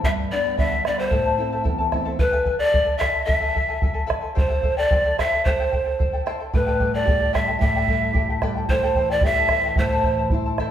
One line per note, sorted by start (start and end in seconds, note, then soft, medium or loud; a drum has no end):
0.04 0.57 G2 medium
0.04 0.17 G4 medium
0.04 0.18 B4 medium
0.04 0.18 D5 medium
0.04 0.11 E5 medium
0.04 0.18 G5 medium
0.04 0.17 B5 medium
0.04 bombo low medium
0.18 0.31 B4 soft
0.18 0.31 D5 soft
0.18 0.31 B5 soft
0.31 0.75 G3 soft
0.31 0.74 B3 soft
0.31 0.75 D4 medium
0.31 0.44 B4 soft
0.31 0.60 D5 medium
0.31 0.44 D5 medium
0.31 0.44 G5 soft
0.31 0.43 B5 medium
0.44 0.59 G4 soft
0.44 0.57 B4 medium
0.44 0.58 D5 medium
0.44 0.56 G5 soft
0.44 0.58 B5 medium
0.57 1.11 D3 medium
0.57 0.71 B4 medium
0.57 0.71 D5 medium
0.57 0.85 E5 medium
0.57 0.71 G5 soft
0.57 0.70 B5 medium
0.57 bombo low medium
0.71 0.85 B4 soft
0.71 0.85 D5 soft
0.71 0.85 B5 soft
0.85 1.07 G3 soft
0.85 1.08 B3 soft
0.85 1.08 D4 soft
0.85 0.99 B4 medium
0.85 0.98 D5 soft
0.85 1.01 D5 medium
0.85 0.98 G5 medium
0.85 0.97 B5 medium
0.85 bombo rim soft
0.98 1.09 G4 medium
0.98 1.10 B4 medium
0.98 1.66 C5 medium
0.98 1.10 D5 medium
0.98 1.09 G5 medium
0.98 1.11 B5 medium
1.10 1.65 A2 medium
1.10 1.25 E4 medium
1.10 1.25 A4 medium
1.10 1.24 C5 medium
1.10 1.24 E5 medium
1.10 1.24 A5 medium
1.10 bombo low medium
1.26 1.38 E4 soft
1.26 1.38 A4 soft
1.26 1.39 A5 medium
1.38 1.82 A3 soft
1.38 1.82 C4 soft
1.38 1.82 E4 medium
1.38 1.52 E4 medium
1.38 1.52 A4 medium
1.38 1.52 E5 medium
1.38 1.51 A5 medium
1.52 1.63 E4 medium
1.52 1.63 A4 medium
1.52 1.66 C5 soft
1.52 1.62 E5 medium
1.52 1.63 A5 medium
1.64 2.18 E2 medium
1.64 1.79 E4 medium
1.64 1.79 A4 medium
1.64 1.79 E5 medium
1.64 1.77 A5 medium
1.64 bombo low medium
1.78 1.91 E4 soft
1.78 1.92 A4 soft
1.78 1.93 A5 medium
1.92 2.15 A3 soft
1.92 2.15 C4 soft
1.92 2.05 E4 medium
1.92 2.15 E4 soft
1.92 2.04 A4 medium
1.92 2.05 E5 medium
1.92 2.04 A5 medium
1.92 bombo rim soft
1.92 bombo low soft
2.05 2.18 E4 medium
2.05 2.18 A4 medium
2.05 2.19 C5 medium
2.05 2.18 E5 medium
2.05 2.19 A5 medium
2.19 2.31 E4 medium
2.19 2.32 A4 medium
2.19 2.32 B4 medium
2.19 2.58 B4 medium
2.19 2.31 E5 medium
2.19 2.31 G#5 medium
2.19 bombo low medium
2.32 2.44 E4 medium
2.32 2.45 A4 medium
2.32 2.47 B4 medium
2.32 2.44 E5 medium
2.32 2.45 G#5 medium
2.46 2.59 E4 medium
2.46 2.58 A4 medium
2.46 2.60 E5 medium
2.46 2.58 G#5 medium
2.46 bombo low medium
2.59 2.69 E4 soft
2.59 2.71 A4 soft
2.59 2.98 D5 medium
2.59 2.70 G#5 soft
2.70 2.85 E4 medium
2.70 2.84 A4 medium
2.70 2.86 E5 medium
2.70 2.84 G#5 medium
2.70 bombo low medium
2.85 2.98 E4 soft
2.85 2.98 A4 soft
2.85 2.97 G#5 medium
2.98 3.12 E4 medium
2.98 3.12 A4 medium
2.98 3.13 B4 medium
2.98 3.13 E5 medium
2.98 3.25 E5 medium
2.98 3.11 G#5 medium
2.98 bombo rim soft
2.98 bombo low soft
3.12 3.25 E4 soft
3.12 3.25 A4 soft
3.12 3.25 G#5 medium
3.25 3.40 E4 medium
3.25 3.40 A4 medium
3.25 3.41 B4 medium
3.25 4.04 E5 loud
3.25 3.41 E5 medium
3.25 3.39 G#5 medium
3.25 bombo low medium
3.41 3.54 E4 medium
3.41 3.54 A4 medium
3.41 3.55 B4 medium
3.41 3.53 E5 medium
3.41 3.55 G#5 medium
3.54 3.69 E4 medium
3.54 3.68 A4 medium
3.54 3.68 E5 medium
3.54 3.67 G#5 medium
3.54 bombo low medium
3.69 3.82 E4 soft
3.69 3.82 A4 soft
3.69 3.82 G#5 medium
3.82 3.94 E4 medium
3.82 3.93 A4 medium
3.82 3.96 E5 medium
3.82 3.92 G#5 medium
3.82 bombo low medium
3.94 4.06 E4 medium
3.94 4.07 A4 medium
3.94 4.07 G#5 medium
4.07 4.22 E4 medium
4.07 4.21 A4 loud
4.07 4.22 B4 medium
4.07 4.22 E5 medium
4.07 4.20 G#5 medium
4.07 bombo rim medium
4.07 bombo low soft
4.21 4.34 E4 soft
4.21 4.34 A4 soft
4.21 4.36 G#5 soft
4.35 4.48 E4 medium
4.35 4.49 G4 medium
4.35 4.48 A4 medium
4.35 4.48 C5 medium
4.35 4.79 C5 medium
4.35 4.47 G5 medium
4.35 bombo low medium
4.49 4.62 E4 medium
4.49 4.64 G4 medium
4.49 4.63 A4 medium
4.49 4.61 C5 medium
4.49 4.63 G5 medium
4.62 4.77 E4 medium
4.62 4.77 A4 medium
4.62 4.77 C5 medium
4.62 4.76 G5 medium
4.62 bombo low medium
4.77 4.91 E4 soft
4.77 4.91 A4 soft
4.77 5.21 D5 loud
4.77 4.91 G5 medium
4.91 5.05 E4 medium
4.91 5.05 A4 medium
4.91 5.05 C5 medium
4.91 5.04 G5 medium
4.91 bombo low medium
5.05 5.18 E4 soft
5.05 5.19 A4 soft
5.05 5.18 G5 soft
5.18 5.32 E4 medium
5.18 5.32 G4 medium
5.18 5.32 A4 medium
5.18 5.32 C5 medium
5.18 5.44 E5 medium
5.18 5.32 G5 medium
5.18 bombo rim soft
5.18 bombo low soft
5.33 5.46 E4 soft
5.33 5.46 A4 soft
5.33 5.45 G5 medium
5.45 5.59 E4 medium
5.45 5.59 G4 medium
5.45 5.58 A4 medium
5.45 6.22 C5 medium
5.45 5.59 C5 medium
5.45 5.59 G5 medium
5.45 bombo low medium
5.59 5.71 E4 medium
5.59 5.73 G4 medium
5.59 5.72 A4 medium
5.59 5.71 C5 medium
5.59 5.72 G5 medium
5.72 5.86 E4 medium
5.72 5.85 A4 medium
5.72 5.85 C5 medium
5.72 5.84 G5 medium
5.72 bombo low soft
5.85 5.98 E4 soft
5.85 5.98 A4 soft
5.85 5.99 G5 soft
5.99 6.13 E4 medium
5.99 6.12 A4 medium
5.99 6.12 C5 medium
5.99 6.12 G5 medium
5.99 bombo low medium
6.13 6.26 E4 soft
6.13 6.26 A4 medium
6.13 6.25 G5 medium
6.26 6.40 E4 medium
6.26 6.39 G4 medium
6.26 6.39 A4 medium
6.26 6.40 C5 medium
6.26 6.39 G5 medium
6.26 bombo rim soft
6.40 6.53 E4 soft
6.40 6.53 A4 soft
6.40 6.53 G5 soft
6.54 7.58 A2 medium
6.54 6.66 G4 medium
6.54 6.66 A4 medium
6.54 6.67 B4 medium
6.54 6.92 B4 medium
6.54 6.67 D5 medium
6.54 6.66 G5 medium
6.54 bombo low medium
6.67 6.80 G4 medium
6.67 6.80 A4 medium
6.67 6.81 B4 medium
6.67 6.79 D5 soft
6.67 6.80 G5 medium
6.80 7.06 G3 medium
6.80 6.94 G4 medium
6.80 6.94 A4 medium
6.80 6.93 D5 medium
6.80 6.94 G5 medium
6.80 bombo low medium
6.95 7.06 G4 soft
6.95 7.06 A4 soft
6.95 7.36 D5 medium
6.95 7.07 G5 soft
7.05 7.32 G4 medium
7.05 7.20 G4 medium
7.05 7.19 A4 medium
7.05 7.20 D5 medium
7.05 7.19 G5 medium
7.05 bombo low medium
7.20 7.33 G4 soft
7.20 7.33 A4 soft
7.20 7.33 G5 medium
7.33 7.59 G3 medium
7.33 7.47 G4 medium
7.33 7.47 A4 medium
7.33 7.47 B4 medium
7.33 7.47 D5 medium
7.33 7.60 E5 medium
7.33 7.47 G5 medium
7.33 bombo rim soft
7.33 bombo low medium
7.48 7.61 G4 soft
7.48 7.60 A4 soft
7.48 7.61 G5 soft
7.59 8.65 A2 medium
7.59 7.75 G4 medium
7.59 7.75 A4 medium
7.59 7.74 B4 medium
7.59 7.75 D5 medium
7.59 8.38 E5 medium
7.59 7.75 G5 medium
7.59 bombo low medium
7.76 7.88 G4 medium
7.76 7.88 A4 medium
7.76 7.89 B4 medium
7.76 7.88 D5 medium
7.76 7.89 G5 medium
7.87 8.14 G3 medium
7.87 8.01 G4 medium
7.87 8.01 A4 medium
7.87 8.02 D5 medium
7.87 8.00 G5 medium
7.87 bombo low medium
8.01 8.13 G4 soft
8.01 8.14 A4 soft
8.01 8.14 G5 medium
8.13 8.41 G4 medium
8.13 8.28 G4 medium
8.13 8.28 A4 medium
8.13 8.28 D5 medium
8.13 8.29 G5 medium
8.13 bombo low medium
8.30 8.42 G4 medium
8.30 8.42 A4 medium
8.30 8.42 G5 medium
8.42 8.68 G3 medium
8.42 8.56 G4 medium
8.42 8.56 A4 medium
8.42 8.56 B4 medium
8.42 8.56 D5 medium
8.42 8.54 G5 medium
8.42 bombo rim soft
8.42 bombo low soft
8.56 8.70 G4 soft
8.56 8.70 A4 soft
8.56 8.69 G5 medium
8.69 9.74 A2 medium
8.69 8.83 E4 medium
8.69 8.83 G4 medium
8.69 8.82 A4 medium
8.69 9.13 C5 medium
8.69 8.83 C5 medium
8.69 8.82 G5 medium
8.69 bombo low medium
8.83 8.96 E4 medium
8.83 8.97 G4 medium
8.83 8.96 A4 medium
8.83 8.95 C5 medium
8.83 8.96 G5 medium
8.95 9.22 E3 medium
8.95 9.09 E4 medium
8.95 9.09 A4 medium
8.95 9.10 C5 medium
8.95 9.09 G5 medium
8.95 bombo low soft
9.10 9.24 E4 soft
9.10 9.24 A4 soft
9.10 9.27 D5 medium
9.10 9.23 G5 medium
9.21 9.37 E4 medium
9.21 9.49 G4 medium
9.21 9.37 A4 medium
9.21 9.37 C5 medium
9.21 bombo low medium
9.25 9.78 E5 loud
9.25 9.36 G5 medium
9.37 9.48 E4 soft
9.37 9.49 A4 soft
9.37 9.49 G5 medium
9.49 9.76 E3 soft
9.49 9.63 E4 medium
9.49 9.63 G4 medium
9.49 9.64 A4 medium
9.49 9.64 C5 medium
9.49 9.64 G5 medium
9.49 bombo rim medium
9.49 bombo low soft
9.65 9.77 E4 soft
9.65 9.76 A4 soft
9.65 9.78 G5 soft
9.76 10.71 A2 medium
9.76 9.91 E4 medium
9.76 9.91 A4 medium
9.76 9.91 C5 medium
9.76 10.28 C5 medium
9.76 9.91 E5 medium
9.76 9.91 A5 medium
9.76 bombo low medium
9.92 10.04 E4 medium
9.92 10.05 A4 medium
9.92 10.05 C5 medium
9.92 10.04 E5 medium
9.92 10.05 A5 medium
10.03 10.30 E3 medium
10.03 10.18 E4 medium
10.03 10.18 C5 medium
10.03 10.18 E5 medium
10.03 10.18 A5 medium
10.03 bombo low medium
10.19 10.32 E4 soft
10.19 10.32 C5 soft
10.19 10.32 A5 soft
10.30 10.57 E4 medium
10.30 10.46 E4 medium
10.30 10.45 C5 medium
10.30 10.45 E5 medium
10.30 bombo low medium
10.34 10.45 A5 medium
10.46 10.58 E4 soft
10.46 10.59 C5 medium
10.46 10.59 A5 medium
10.58 10.71 E3 medium
10.58 10.71 E4 medium
10.58 10.71 A4 medium
10.58 10.71 C5 medium
10.58 10.71 E5 medium
10.58 10.71 A5 medium
10.58 bombo rim soft
10.58 bombo low soft